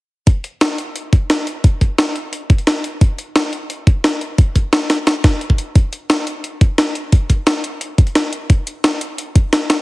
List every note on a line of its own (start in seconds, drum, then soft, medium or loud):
0.27 kick loud
0.27 closed hi-hat medium
0.44 closed hi-hat medium
0.61 snare loud
0.61 closed hi-hat medium
0.78 closed hi-hat medium
0.96 closed hi-hat medium
1.13 kick loud
1.13 closed hi-hat medium
1.30 snare loud
1.30 closed hi-hat medium
1.47 closed hi-hat medium
1.64 kick loud
1.64 closed hi-hat medium
1.81 kick medium
1.81 closed hi-hat medium
1.98 snare loud
1.98 closed hi-hat medium
2.16 closed hi-hat medium
2.33 closed hi-hat medium
2.50 kick loud
2.50 closed hi-hat medium
2.58 closed hi-hat soft
2.67 snare loud
2.67 closed hi-hat medium
2.84 closed hi-hat medium
3.01 kick loud
3.01 closed hi-hat medium
3.18 closed hi-hat medium
3.36 snare loud
3.36 closed hi-hat medium
3.53 closed hi-hat medium
3.70 closed hi-hat medium
3.87 kick loud
3.87 closed hi-hat medium
4.04 snare loud
4.04 closed hi-hat medium
4.21 closed hi-hat medium
4.38 kick loud
4.38 closed hi-hat medium
4.56 kick medium
4.56 closed hi-hat medium
4.73 snare loud
4.73 closed hi-hat medium
4.90 snare loud
4.90 closed hi-hat medium
5.07 snare loud
5.07 closed hi-hat medium
5.24 kick loud
5.24 snare loud
5.24 closed hi-hat medium
5.41 closed hi-hat medium
5.50 kick medium
5.58 closed hi-hat medium
5.75 kick loud
5.75 closed hi-hat medium
5.93 closed hi-hat medium
6.10 snare loud
6.10 closed hi-hat medium
6.27 closed hi-hat medium
6.44 closed hi-hat medium
6.61 kick loud
6.61 closed hi-hat medium
6.78 snare loud
6.78 closed hi-hat medium
6.95 closed hi-hat medium
7.12 kick loud
7.12 closed hi-hat medium
7.30 kick medium
7.30 closed hi-hat medium
7.47 snare loud
7.47 closed hi-hat medium
7.64 closed hi-hat medium
7.81 closed hi-hat medium
7.98 kick loud
7.98 closed hi-hat medium
8.07 closed hi-hat soft
8.15 snare loud
8.15 closed hi-hat medium
8.33 closed hi-hat medium
8.50 kick loud
8.50 closed hi-hat medium
8.67 closed hi-hat medium
8.84 snare loud
8.84 closed hi-hat medium
9.01 closed hi-hat medium
9.18 closed hi-hat medium
9.36 kick loud
9.36 closed hi-hat medium
9.53 snare loud
9.53 closed hi-hat medium
9.70 snare loud
9.70 closed hi-hat medium